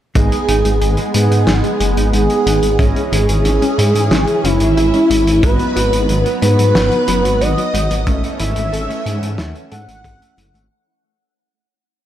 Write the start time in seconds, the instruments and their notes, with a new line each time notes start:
0.15 detuned saw bass G#1, synth arpeggio sound G#3, clean electric guitar G#3, analog synth pad G#3 B3, analog polysynth B3 D#4 G#4 D#5, soft synth lead G#4, string machine G#4, kick, closed hi-hat
0.32 clean electric guitar G#3, closed hi-hat
0.48 detuned saw bass G#1, synth arpeggio sound D#4, clean electric guitar D#4, closed hi-hat
0.65 detuned saw bass G#1, synth arpeggio sound G#3, clean electric guitar D#4, closed hi-hat
0.81 detuned saw bass G#1, synth arpeggio sound G#4, closed hi-hat
0.97 synth arpeggio sound G#3, clean electric guitar G#3, closed hi-hat
1.14 detuned saw bass G#2, synth arpeggio sound G#3, analog polysynth B3 D#4 G#4 F#5, soft synth lead G#4, string machine G#4, clean electric guitar G#4, closed hi-hat
1.31 detuned saw bass G#2, clean electric guitar D#4, closed hi-hat
1.47 detuned saw bass G#1, clean electric guitar G#3, synth arpeggio sound D#4, snare, closed hi-hat
1.64 synth arpeggio sound G#3, closed hi-hat
1.80 detuned saw bass F#1, clean electric guitar G#3, synth arpeggio sound G#4, closed hi-hat
1.97 detuned saw bass G#1, synth arpeggio sound G#3, clean electric guitar D#4, closed hi-hat
2.13 detuned saw bass G#1, synth arpeggio sound G#3, clean electric guitar D#4, soft synth lead G#4, string machine G#4, closed hi-hat
2.30 clean electric guitar G#3, closed hi-hat
2.46 detuned saw bass G#1, clean electric guitar B3, synth arpeggio sound D#4, closed hi-hat
2.62 detuned saw bass G#1, synth arpeggio sound G#3, closed hi-hat
2.79 detuned saw bass G#1, analog synth pad E3 C#4, analog polysynth C#4 E4 G#4 D#5, clean electric guitar C#4, synth arpeggio sound E4, kick, closed hi-hat
2.96 synth arpeggio sound G#3, clean electric guitar C#4, closed hi-hat
3.12 detuned saw bass G#1, synth arpeggio sound G#3, soft synth lead G#4, clean electric guitar G#4, string machine G#4, closed hi-hat
3.29 detuned saw bass G#1, clean electric guitar G#4, closed hi-hat
3.45 detuned saw bass G#1, synth arpeggio sound D#4, closed hi-hat
3.62 synth arpeggio sound G#3, clean electric guitar C#4, closed hi-hat
3.78 detuned saw bass G#2, analog polysynth C#4 E4 G#4 E5, synth arpeggio sound E4, clean electric guitar C#5, closed hi-hat
3.95 detuned saw bass G#2, synth arpeggio sound G#3, clean electric guitar G#4, closed hi-hat
4.11 detuned saw bass G#1, synth arpeggio sound G#3, clean electric guitar C#4, snare, closed hi-hat
4.27 closed hi-hat
4.44 detuned saw bass F#1, clean electric guitar C#4, synth arpeggio sound D#4, soft synth lead E4, string machine E4, closed hi-hat
4.60 detuned saw bass G#1, synth arpeggio sound G#3, clean electric guitar G#4, closed hi-hat
4.77 detuned saw bass G#1, synth arpeggio sound E4, clean electric guitar G#4, closed hi-hat
4.93 synth arpeggio sound G#3, clean electric guitar C#4, closed hi-hat
5.10 detuned saw bass G#1, synth arpeggio sound G#3, clean electric guitar E4, closed hi-hat
5.26 detuned saw bass G#1, closed hi-hat
5.43 detuned saw bass G#1, analog synth pad F#3 B3, clean electric guitar B3, analog polysynth B3 D#4 F#4 D#5, synth arpeggio sound D#4, soft synth lead B4, string machine B4, kick, closed hi-hat
5.59 synth arpeggio sound F#3, clean electric guitar B3, closed hi-hat
5.76 detuned saw bass G#1, clean electric guitar F#4, synth arpeggio sound F#4, closed hi-hat
5.92 detuned saw bass G#1, synth arpeggio sound F#3, clean electric guitar F#4, closed hi-hat
6.09 detuned saw bass G#1, synth arpeggio sound F#3, closed hi-hat
6.25 clean electric guitar B3, closed hi-hat
6.42 detuned saw bass G#2, analog polysynth B3 D#4 F#4 F#5, synth arpeggio sound D#4, clean electric guitar B4, string machine B4, soft synth lead B4, closed hi-hat
6.58 detuned saw bass G#2, synth arpeggio sound F#3, clean electric guitar F#4, closed hi-hat
6.75 detuned saw bass G#1, clean electric guitar B3, synth arpeggio sound F#4, snare, closed hi-hat
6.91 synth arpeggio sound F#3, closed hi-hat
7.07 detuned saw bass F#1, synth arpeggio sound F#3, clean electric guitar B3, closed hi-hat
7.24 detuned saw bass G#1, clean electric guitar F#4, closed hi-hat
7.41 detuned saw bass G#1, synth arpeggio sound D#4, clean electric guitar F#4, string machine D#5, soft synth lead D#5, closed hi-hat
7.57 synth arpeggio sound F#3, clean electric guitar B3, closed hi-hat
7.74 detuned saw bass G#1, clean electric guitar D#4, synth arpeggio sound F#4, closed hi-hat
7.90 detuned saw bass G#1, synth arpeggio sound F#3, closed hi-hat
8.07 detuned saw bass G#1, analog synth pad E3 A3 C#4, synth arpeggio sound A3, clean electric guitar A3, analog polysynth C#4 E4 A4 E5, kick, closed hi-hat
8.23 clean electric guitar A3, closed hi-hat
8.39 detuned saw bass G#1, synth arpeggio sound E4, clean electric guitar E4, soft synth lead E5, string machine E5, closed hi-hat
8.56 detuned saw bass G#1, synth arpeggio sound A3, clean electric guitar E4, closed hi-hat
8.73 detuned saw bass G#1, synth arpeggio sound A4, closed hi-hat
8.89 synth arpeggio sound A3, clean electric guitar A3, closed hi-hat
9.06 detuned saw bass G#2, synth arpeggio sound A3, analog polysynth C#4 E4 A4 F#5, clean electric guitar A4, closed hi-hat
9.22 detuned saw bass G#2, clean electric guitar E4, closed hi-hat
9.38 detuned saw bass D#2, clean electric guitar A3, synth arpeggio sound E4, snare, closed hi-hat
9.55 synth arpeggio sound A3, closed hi-hat
9.71 detuned saw bass G#2, clean electric guitar A3, synth arpeggio sound A4, soft synth lead F#5, string machine F#5, closed hi-hat
9.88 detuned saw bass G#1, synth arpeggio sound A3, clean electric guitar A3, closed hi-hat
10.04 detuned saw bass G#1, synth arpeggio sound A3, clean electric guitar A4, kick, closed hi-hat
10.21 clean electric guitar A3, closed hi-hat
10.38 detuned saw bass F#1, clean electric guitar A3, synth arpeggio sound E4, closed hi-hat
10.54 detuned saw bass G#1, synth arpeggio sound A3, clean electric guitar A3, closed hi-hat